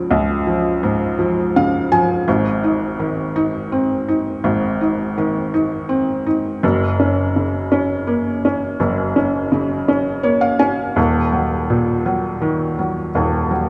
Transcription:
Already playing: G#2 C#3 F3
0.11 C#2
0.47 F3
0.83 G#2
1.19 F3
1.56 C#3 F5
1.92 F3 G#5
2.28 G#1 G#2
2.64 D#4
2.99 D#3
3.36 D#4
3.72 C4
4.08 D#4
4.44 G#1 G#2
4.81 D#4
5.18 D#3
5.54 D#4
5.89 C4
6.26 D#4
6.63 F#1 F#2
7.00 C#4
7.36 C#3
7.72 C#4
8.07 A#3
8.45 C#4
8.80 F#1 F#2
9.16 C#4
9.52 C#3
9.88 C#4
10.23 A#3 C#5
10.41 F5
10.59 C#4 G#5
10.96 D#1 D#2
11.32 F#3
11.70 A#2
12.06 F#3
12.41 D#3
12.79 F#3
13.15 D#1 D#2
13.51 F#3

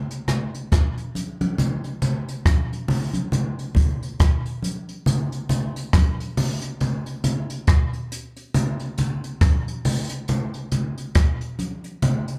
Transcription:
0.11 closed hi-hat
0.28 cross-stick, closed hi-hat, low conga
0.54 closed hi-hat
0.72 kick, cross-stick, closed hi-hat, high conga
0.98 closed hi-hat
1.15 closed hi-hat, high conga
1.41 closed hi-hat, high conga
1.58 closed hi-hat, low conga
1.84 closed hi-hat
2.02 closed hi-hat, low conga
2.28 closed hi-hat
2.46 kick, cross-stick, closed hi-hat, high conga
2.73 closed hi-hat
2.88 open hi-hat, low conga
3.13 closed hi-hat, high conga
3.32 closed hi-hat, low conga
3.59 closed hi-hat
3.75 kick, closed hi-hat, low conga
4.03 closed hi-hat
4.20 kick, cross-stick, closed hi-hat
4.46 closed hi-hat
4.62 closed hi-hat, high conga
4.89 closed hi-hat
5.06 closed hi-hat, low conga
5.32 closed hi-hat
5.49 closed hi-hat, low conga
5.76 closed hi-hat
5.93 kick, cross-stick, closed hi-hat, high conga
6.20 closed hi-hat
6.37 open hi-hat, low conga
6.62 closed hi-hat
6.80 closed hi-hat, low conga
7.06 closed hi-hat
7.24 closed hi-hat, low conga
7.50 closed hi-hat
7.67 kick, cross-stick, closed hi-hat
7.93 closed hi-hat
8.12 closed hi-hat
8.37 closed hi-hat
8.54 closed hi-hat, low conga
8.80 closed hi-hat
8.98 closed hi-hat, low conga
9.24 closed hi-hat
9.41 kick, cross-stick, closed hi-hat, high conga
9.68 closed hi-hat
9.85 open hi-hat, low conga
10.09 closed hi-hat
10.28 closed hi-hat, low conga
10.54 closed hi-hat
10.72 closed hi-hat, low conga
10.98 closed hi-hat
11.15 kick, cross-stick, closed hi-hat
11.41 closed hi-hat
11.59 closed hi-hat, high conga
11.84 closed hi-hat
12.02 closed hi-hat, low conga
12.28 closed hi-hat

